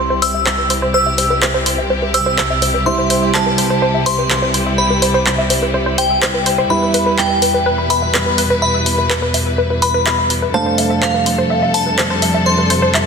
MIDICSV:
0, 0, Header, 1, 6, 480
1, 0, Start_track
1, 0, Key_signature, 0, "major"
1, 0, Tempo, 480000
1, 941, Time_signature, 4, 2, 24, 8
1, 13064, End_track
2, 0, Start_track
2, 0, Title_t, "Synth bell"
2, 0, Program_c, 0, 98
2, 0, Note_on_c, 0, 84, 90
2, 126, Note_off_c, 0, 84, 0
2, 222, Note_on_c, 0, 88, 90
2, 847, Note_off_c, 0, 88, 0
2, 941, Note_on_c, 0, 88, 81
2, 1374, Note_off_c, 0, 88, 0
2, 2141, Note_on_c, 0, 88, 85
2, 2766, Note_off_c, 0, 88, 0
2, 2861, Note_on_c, 0, 84, 90
2, 3294, Note_off_c, 0, 84, 0
2, 3341, Note_on_c, 0, 81, 91
2, 3966, Note_off_c, 0, 81, 0
2, 4061, Note_on_c, 0, 84, 89
2, 4686, Note_off_c, 0, 84, 0
2, 4781, Note_on_c, 0, 83, 82
2, 5214, Note_off_c, 0, 83, 0
2, 5982, Note_on_c, 0, 79, 86
2, 6607, Note_off_c, 0, 79, 0
2, 6701, Note_on_c, 0, 83, 92
2, 7134, Note_off_c, 0, 83, 0
2, 7182, Note_on_c, 0, 79, 90
2, 7807, Note_off_c, 0, 79, 0
2, 7901, Note_on_c, 0, 83, 86
2, 8526, Note_off_c, 0, 83, 0
2, 8621, Note_on_c, 0, 83, 84
2, 9054, Note_off_c, 0, 83, 0
2, 9822, Note_on_c, 0, 83, 89
2, 10447, Note_off_c, 0, 83, 0
2, 10541, Note_on_c, 0, 81, 93
2, 10974, Note_off_c, 0, 81, 0
2, 11022, Note_on_c, 0, 77, 90
2, 11647, Note_off_c, 0, 77, 0
2, 11740, Note_on_c, 0, 81, 89
2, 12366, Note_off_c, 0, 81, 0
2, 12460, Note_on_c, 0, 84, 83
2, 12893, Note_off_c, 0, 84, 0
2, 13064, End_track
3, 0, Start_track
3, 0, Title_t, "Synth arpeggio sound"
3, 0, Program_c, 1, 84
3, 102, Note_on_c, 1, 72, 101
3, 151, Note_off_c, 1, 72, 0
3, 221, Note_on_c, 1, 72, 99
3, 271, Note_off_c, 1, 72, 0
3, 343, Note_on_c, 1, 76, 74
3, 372, Note_off_c, 1, 76, 0
3, 461, Note_on_c, 1, 72, 76
3, 491, Note_off_c, 1, 72, 0
3, 583, Note_on_c, 1, 71, 68
3, 631, Note_off_c, 1, 71, 0
3, 701, Note_on_c, 1, 72, 98
3, 731, Note_off_c, 1, 72, 0
3, 823, Note_on_c, 1, 72, 100
3, 871, Note_off_c, 1, 72, 0
3, 941, Note_on_c, 1, 72, 100
3, 991, Note_off_c, 1, 72, 0
3, 1063, Note_on_c, 1, 76, 73
3, 1092, Note_off_c, 1, 76, 0
3, 1182, Note_on_c, 1, 72, 73
3, 1211, Note_off_c, 1, 72, 0
3, 1303, Note_on_c, 1, 71, 75
3, 1351, Note_off_c, 1, 71, 0
3, 1421, Note_on_c, 1, 72, 96
3, 1451, Note_off_c, 1, 72, 0
3, 1543, Note_on_c, 1, 72, 94
3, 1591, Note_off_c, 1, 72, 0
3, 1661, Note_on_c, 1, 72, 92
3, 1711, Note_off_c, 1, 72, 0
3, 1782, Note_on_c, 1, 76, 70
3, 1812, Note_off_c, 1, 76, 0
3, 1901, Note_on_c, 1, 72, 83
3, 1931, Note_off_c, 1, 72, 0
3, 2022, Note_on_c, 1, 71, 72
3, 2071, Note_off_c, 1, 71, 0
3, 2141, Note_on_c, 1, 72, 100
3, 2171, Note_off_c, 1, 72, 0
3, 2262, Note_on_c, 1, 72, 98
3, 2311, Note_off_c, 1, 72, 0
3, 2381, Note_on_c, 1, 72, 92
3, 2431, Note_off_c, 1, 72, 0
3, 2502, Note_on_c, 1, 76, 73
3, 2532, Note_off_c, 1, 76, 0
3, 2621, Note_on_c, 1, 72, 77
3, 2651, Note_off_c, 1, 72, 0
3, 2742, Note_on_c, 1, 71, 74
3, 2791, Note_off_c, 1, 71, 0
3, 2861, Note_on_c, 1, 72, 99
3, 2891, Note_off_c, 1, 72, 0
3, 2982, Note_on_c, 1, 72, 93
3, 3031, Note_off_c, 1, 72, 0
3, 3101, Note_on_c, 1, 72, 101
3, 3151, Note_off_c, 1, 72, 0
3, 3222, Note_on_c, 1, 76, 70
3, 3252, Note_off_c, 1, 76, 0
3, 3341, Note_on_c, 1, 72, 87
3, 3371, Note_off_c, 1, 72, 0
3, 3463, Note_on_c, 1, 71, 71
3, 3511, Note_off_c, 1, 71, 0
3, 3581, Note_on_c, 1, 72, 90
3, 3611, Note_off_c, 1, 72, 0
3, 3703, Note_on_c, 1, 72, 90
3, 3751, Note_off_c, 1, 72, 0
3, 3821, Note_on_c, 1, 72, 101
3, 3871, Note_off_c, 1, 72, 0
3, 3943, Note_on_c, 1, 76, 73
3, 3972, Note_off_c, 1, 76, 0
3, 4061, Note_on_c, 1, 72, 75
3, 4091, Note_off_c, 1, 72, 0
3, 4183, Note_on_c, 1, 71, 73
3, 4231, Note_off_c, 1, 71, 0
3, 4301, Note_on_c, 1, 72, 95
3, 4331, Note_off_c, 1, 72, 0
3, 4423, Note_on_c, 1, 72, 94
3, 4471, Note_off_c, 1, 72, 0
3, 4541, Note_on_c, 1, 72, 97
3, 4591, Note_off_c, 1, 72, 0
3, 4663, Note_on_c, 1, 76, 78
3, 4692, Note_off_c, 1, 76, 0
3, 4781, Note_on_c, 1, 72, 78
3, 4811, Note_off_c, 1, 72, 0
3, 4903, Note_on_c, 1, 71, 71
3, 4951, Note_off_c, 1, 71, 0
3, 5021, Note_on_c, 1, 72, 96
3, 5051, Note_off_c, 1, 72, 0
3, 5142, Note_on_c, 1, 72, 99
3, 5191, Note_off_c, 1, 72, 0
3, 5261, Note_on_c, 1, 72, 103
3, 5311, Note_off_c, 1, 72, 0
3, 5383, Note_on_c, 1, 76, 72
3, 5412, Note_off_c, 1, 76, 0
3, 5501, Note_on_c, 1, 72, 71
3, 5531, Note_off_c, 1, 72, 0
3, 5623, Note_on_c, 1, 71, 71
3, 5672, Note_off_c, 1, 71, 0
3, 5741, Note_on_c, 1, 72, 98
3, 5771, Note_off_c, 1, 72, 0
3, 5862, Note_on_c, 1, 72, 92
3, 5911, Note_off_c, 1, 72, 0
3, 5981, Note_on_c, 1, 72, 99
3, 6031, Note_off_c, 1, 72, 0
3, 6103, Note_on_c, 1, 76, 72
3, 6132, Note_off_c, 1, 76, 0
3, 6221, Note_on_c, 1, 72, 79
3, 6251, Note_off_c, 1, 72, 0
3, 6343, Note_on_c, 1, 71, 72
3, 6391, Note_off_c, 1, 71, 0
3, 6462, Note_on_c, 1, 72, 99
3, 6491, Note_off_c, 1, 72, 0
3, 6582, Note_on_c, 1, 72, 101
3, 6631, Note_off_c, 1, 72, 0
3, 6701, Note_on_c, 1, 71, 82
3, 6731, Note_off_c, 1, 71, 0
3, 6822, Note_on_c, 1, 71, 75
3, 6871, Note_off_c, 1, 71, 0
3, 6941, Note_on_c, 1, 71, 95
3, 6971, Note_off_c, 1, 71, 0
3, 7063, Note_on_c, 1, 71, 96
3, 7111, Note_off_c, 1, 71, 0
3, 7181, Note_on_c, 1, 76, 83
3, 7211, Note_off_c, 1, 76, 0
3, 7303, Note_on_c, 1, 76, 71
3, 7332, Note_off_c, 1, 76, 0
3, 7422, Note_on_c, 1, 71, 68
3, 7451, Note_off_c, 1, 71, 0
3, 7543, Note_on_c, 1, 71, 75
3, 7592, Note_off_c, 1, 71, 0
3, 7661, Note_on_c, 1, 71, 103
3, 7691, Note_off_c, 1, 71, 0
3, 7782, Note_on_c, 1, 71, 94
3, 7831, Note_off_c, 1, 71, 0
3, 7901, Note_on_c, 1, 76, 76
3, 7931, Note_off_c, 1, 76, 0
3, 8023, Note_on_c, 1, 76, 73
3, 8052, Note_off_c, 1, 76, 0
3, 8141, Note_on_c, 1, 71, 75
3, 8171, Note_off_c, 1, 71, 0
3, 8263, Note_on_c, 1, 71, 73
3, 8311, Note_off_c, 1, 71, 0
3, 8381, Note_on_c, 1, 71, 102
3, 8411, Note_off_c, 1, 71, 0
3, 8503, Note_on_c, 1, 71, 94
3, 8551, Note_off_c, 1, 71, 0
3, 8621, Note_on_c, 1, 76, 78
3, 8651, Note_off_c, 1, 76, 0
3, 8743, Note_on_c, 1, 76, 74
3, 8772, Note_off_c, 1, 76, 0
3, 8861, Note_on_c, 1, 71, 76
3, 8891, Note_off_c, 1, 71, 0
3, 8983, Note_on_c, 1, 71, 73
3, 9031, Note_off_c, 1, 71, 0
3, 9101, Note_on_c, 1, 71, 101
3, 9131, Note_off_c, 1, 71, 0
3, 9222, Note_on_c, 1, 71, 94
3, 9271, Note_off_c, 1, 71, 0
3, 9341, Note_on_c, 1, 76, 71
3, 9371, Note_off_c, 1, 76, 0
3, 9463, Note_on_c, 1, 76, 70
3, 9492, Note_off_c, 1, 76, 0
3, 9582, Note_on_c, 1, 71, 83
3, 9611, Note_off_c, 1, 71, 0
3, 9703, Note_on_c, 1, 71, 70
3, 9752, Note_off_c, 1, 71, 0
3, 9822, Note_on_c, 1, 71, 103
3, 9851, Note_off_c, 1, 71, 0
3, 9943, Note_on_c, 1, 71, 97
3, 9991, Note_off_c, 1, 71, 0
3, 10062, Note_on_c, 1, 76, 81
3, 10091, Note_off_c, 1, 76, 0
3, 10183, Note_on_c, 1, 76, 74
3, 10212, Note_off_c, 1, 76, 0
3, 10301, Note_on_c, 1, 71, 76
3, 10331, Note_off_c, 1, 71, 0
3, 10423, Note_on_c, 1, 71, 76
3, 10471, Note_off_c, 1, 71, 0
3, 10541, Note_on_c, 1, 72, 101
3, 10571, Note_off_c, 1, 72, 0
3, 10663, Note_on_c, 1, 72, 92
3, 10711, Note_off_c, 1, 72, 0
3, 10782, Note_on_c, 1, 76, 71
3, 10811, Note_off_c, 1, 76, 0
3, 10903, Note_on_c, 1, 76, 76
3, 10932, Note_off_c, 1, 76, 0
3, 11022, Note_on_c, 1, 72, 84
3, 11051, Note_off_c, 1, 72, 0
3, 11143, Note_on_c, 1, 71, 72
3, 11191, Note_off_c, 1, 71, 0
3, 11261, Note_on_c, 1, 72, 90
3, 11291, Note_off_c, 1, 72, 0
3, 11383, Note_on_c, 1, 72, 97
3, 11432, Note_off_c, 1, 72, 0
3, 11502, Note_on_c, 1, 76, 83
3, 11532, Note_off_c, 1, 76, 0
3, 11624, Note_on_c, 1, 76, 75
3, 11652, Note_off_c, 1, 76, 0
3, 11742, Note_on_c, 1, 72, 74
3, 11771, Note_off_c, 1, 72, 0
3, 11863, Note_on_c, 1, 71, 72
3, 11912, Note_off_c, 1, 71, 0
3, 11982, Note_on_c, 1, 72, 95
3, 12011, Note_off_c, 1, 72, 0
3, 12103, Note_on_c, 1, 72, 98
3, 12152, Note_off_c, 1, 72, 0
3, 12222, Note_on_c, 1, 76, 76
3, 12251, Note_off_c, 1, 76, 0
3, 12343, Note_on_c, 1, 76, 79
3, 12372, Note_off_c, 1, 76, 0
3, 12462, Note_on_c, 1, 72, 80
3, 12492, Note_off_c, 1, 72, 0
3, 12584, Note_on_c, 1, 71, 73
3, 12632, Note_off_c, 1, 71, 0
3, 12702, Note_on_c, 1, 72, 100
3, 12732, Note_off_c, 1, 72, 0
3, 12824, Note_on_c, 1, 72, 98
3, 12872, Note_off_c, 1, 72, 0
3, 12942, Note_on_c, 1, 76, 83
3, 12972, Note_off_c, 1, 76, 0
3, 13064, End_track
4, 0, Start_track
4, 0, Title_t, "Felt piano"
4, 0, Program_c, 2, 0
4, 0, Note_on_c, 2, 55, 74
4, 0, Note_on_c, 2, 64, 68
4, 0, Note_on_c, 2, 72, 66
4, 0, Note_on_c, 2, 76, 77
4, 2833, Note_off_c, 2, 55, 0
4, 2833, Note_off_c, 2, 64, 0
4, 2833, Note_off_c, 2, 72, 0
4, 2833, Note_off_c, 2, 76, 0
4, 2861, Note_on_c, 2, 55, 73
4, 2861, Note_on_c, 2, 64, 69
4, 2861, Note_on_c, 2, 72, 67
4, 2861, Note_on_c, 2, 76, 78
4, 6673, Note_off_c, 2, 55, 0
4, 6673, Note_off_c, 2, 64, 0
4, 6673, Note_off_c, 2, 72, 0
4, 6673, Note_off_c, 2, 76, 0
4, 6700, Note_on_c, 2, 55, 73
4, 6701, Note_on_c, 2, 64, 63
4, 6701, Note_on_c, 2, 71, 67
4, 6701, Note_on_c, 2, 76, 79
4, 10512, Note_off_c, 2, 55, 0
4, 10513, Note_off_c, 2, 64, 0
4, 10513, Note_off_c, 2, 71, 0
4, 10513, Note_off_c, 2, 76, 0
4, 10541, Note_on_c, 2, 62, 67
4, 10541, Note_on_c, 2, 72, 66
4, 10541, Note_on_c, 2, 77, 82
4, 10542, Note_on_c, 2, 57, 75
4, 13064, Note_off_c, 2, 57, 0
4, 13064, Note_off_c, 2, 62, 0
4, 13064, Note_off_c, 2, 72, 0
4, 13064, Note_off_c, 2, 77, 0
4, 13064, End_track
5, 0, Start_track
5, 0, Title_t, "String section"
5, 0, Program_c, 3, 48
5, 0, Note_on_c, 3, 36, 74
5, 0, Note_on_c, 3, 48, 72
5, 0, Note_on_c, 3, 55, 71
5, 0, Note_on_c, 3, 64, 72
5, 0, Note_on_c, 3, 67, 85
5, 6662, Note_off_c, 3, 36, 0
5, 6662, Note_off_c, 3, 48, 0
5, 6662, Note_off_c, 3, 67, 0
5, 6701, Note_on_c, 3, 40, 73
5, 6701, Note_on_c, 3, 47, 70
5, 6701, Note_on_c, 3, 71, 83
5, 10502, Note_off_c, 3, 55, 0
5, 10502, Note_off_c, 3, 64, 0
5, 10503, Note_off_c, 3, 40, 0
5, 10503, Note_off_c, 3, 47, 0
5, 10503, Note_off_c, 3, 71, 0
5, 10541, Note_on_c, 3, 55, 69
5, 10541, Note_on_c, 3, 62, 71
5, 10542, Note_on_c, 3, 41, 81
5, 10542, Note_on_c, 3, 48, 71
5, 10542, Note_on_c, 3, 69, 89
5, 13064, Note_off_c, 3, 41, 0
5, 13064, Note_off_c, 3, 48, 0
5, 13064, Note_off_c, 3, 55, 0
5, 13064, Note_off_c, 3, 62, 0
5, 13064, Note_off_c, 3, 69, 0
5, 13064, End_track
6, 0, Start_track
6, 0, Title_t, "Drums"
6, 222, Note_on_c, 9, 46, 100
6, 322, Note_off_c, 9, 46, 0
6, 463, Note_on_c, 9, 39, 122
6, 563, Note_off_c, 9, 39, 0
6, 701, Note_on_c, 9, 46, 99
6, 801, Note_off_c, 9, 46, 0
6, 1182, Note_on_c, 9, 46, 96
6, 1282, Note_off_c, 9, 46, 0
6, 1423, Note_on_c, 9, 39, 112
6, 1523, Note_off_c, 9, 39, 0
6, 1661, Note_on_c, 9, 46, 106
6, 1761, Note_off_c, 9, 46, 0
6, 2141, Note_on_c, 9, 46, 105
6, 2241, Note_off_c, 9, 46, 0
6, 2383, Note_on_c, 9, 39, 119
6, 2483, Note_off_c, 9, 39, 0
6, 2621, Note_on_c, 9, 46, 104
6, 2721, Note_off_c, 9, 46, 0
6, 3101, Note_on_c, 9, 46, 102
6, 3201, Note_off_c, 9, 46, 0
6, 3343, Note_on_c, 9, 39, 106
6, 3443, Note_off_c, 9, 39, 0
6, 3581, Note_on_c, 9, 46, 106
6, 3681, Note_off_c, 9, 46, 0
6, 4062, Note_on_c, 9, 46, 105
6, 4162, Note_off_c, 9, 46, 0
6, 4303, Note_on_c, 9, 39, 117
6, 4403, Note_off_c, 9, 39, 0
6, 4542, Note_on_c, 9, 46, 106
6, 4642, Note_off_c, 9, 46, 0
6, 5022, Note_on_c, 9, 46, 93
6, 5122, Note_off_c, 9, 46, 0
6, 5263, Note_on_c, 9, 39, 107
6, 5363, Note_off_c, 9, 39, 0
6, 5502, Note_on_c, 9, 46, 102
6, 5602, Note_off_c, 9, 46, 0
6, 5981, Note_on_c, 9, 46, 103
6, 6081, Note_off_c, 9, 46, 0
6, 6223, Note_on_c, 9, 39, 111
6, 6323, Note_off_c, 9, 39, 0
6, 6461, Note_on_c, 9, 46, 100
6, 6561, Note_off_c, 9, 46, 0
6, 6942, Note_on_c, 9, 46, 91
6, 7041, Note_off_c, 9, 46, 0
6, 7183, Note_on_c, 9, 39, 106
6, 7283, Note_off_c, 9, 39, 0
6, 7421, Note_on_c, 9, 46, 97
6, 7521, Note_off_c, 9, 46, 0
6, 7901, Note_on_c, 9, 46, 97
6, 8001, Note_off_c, 9, 46, 0
6, 8143, Note_on_c, 9, 39, 106
6, 8243, Note_off_c, 9, 39, 0
6, 8381, Note_on_c, 9, 46, 105
6, 8481, Note_off_c, 9, 46, 0
6, 8861, Note_on_c, 9, 46, 93
6, 8961, Note_off_c, 9, 46, 0
6, 9103, Note_on_c, 9, 39, 99
6, 9203, Note_off_c, 9, 39, 0
6, 9342, Note_on_c, 9, 46, 96
6, 9442, Note_off_c, 9, 46, 0
6, 9821, Note_on_c, 9, 46, 92
6, 9921, Note_off_c, 9, 46, 0
6, 10063, Note_on_c, 9, 39, 106
6, 10163, Note_off_c, 9, 39, 0
6, 10302, Note_on_c, 9, 46, 95
6, 10402, Note_off_c, 9, 46, 0
6, 10782, Note_on_c, 9, 46, 92
6, 10881, Note_off_c, 9, 46, 0
6, 11023, Note_on_c, 9, 39, 110
6, 11123, Note_off_c, 9, 39, 0
6, 11262, Note_on_c, 9, 46, 95
6, 11362, Note_off_c, 9, 46, 0
6, 11742, Note_on_c, 9, 46, 99
6, 11842, Note_off_c, 9, 46, 0
6, 11984, Note_on_c, 9, 39, 111
6, 12084, Note_off_c, 9, 39, 0
6, 12222, Note_on_c, 9, 46, 100
6, 12322, Note_off_c, 9, 46, 0
6, 12702, Note_on_c, 9, 46, 94
6, 12801, Note_off_c, 9, 46, 0
6, 12943, Note_on_c, 9, 39, 109
6, 13043, Note_off_c, 9, 39, 0
6, 13064, End_track
0, 0, End_of_file